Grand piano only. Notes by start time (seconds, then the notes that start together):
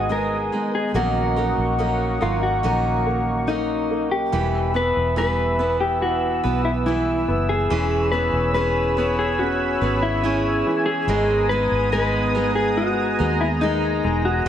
Already playing: G#3
0.10 G#3
0.53 G#3
0.95 A#3
1.38 A#3
1.80 A#3
2.21 A#3
2.64 A#3
3.07 A#3
3.48 A#3
3.91 A#3
4.33 E3
4.75 B3
5.17 E3
5.59 B3
6.01 E3
6.44 B3
6.86 E3
7.28 B3
7.70 E3
8.13 B3
8.56 C#4
8.98 B3
9.40 C#4
9.82 B3
10.25 C#4
10.66 E3
11.09 G#3
11.50 G#3
11.93 G#3
12.36 G#3
12.78 G#3
13.20 G#3
13.63 G#3
14.05 G#3